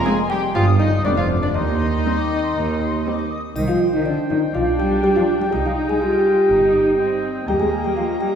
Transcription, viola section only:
0.06 G#3 C4
0.55 G3 C4
1.05 G3 B3
2.05 G3 C4
3.05 G3 C4
4.54 D4
5.52 D#4
6.01 F4
6.49 D#4
6.99 C4
7.48 A#3

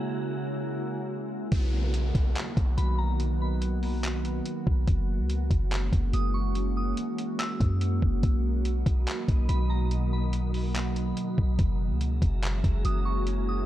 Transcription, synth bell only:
2.77 B5
2.98 A#5
3.42 B5
6.14 D#6
6.34 C#6
6.77 D#6
7.39 E6
9.49 B5
9.70 A#5
10.13 B5
12.85 D#6
13.05 C#6
13.49 D#6

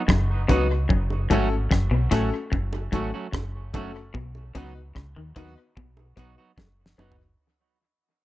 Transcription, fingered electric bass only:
0.09 F#1
0.50 C#2
0.91 F#1
1.31 G#1
1.72 F#1
1.91 B1
2.12 A1
2.53 F#1
2.93 G#1
3.34 F#1
4.15 B1
4.55 C#2
4.96 C#2
5.17 D#2
5.36 D#2
5.77 B1
6.17 B1
6.58 F#1
6.98 F#1

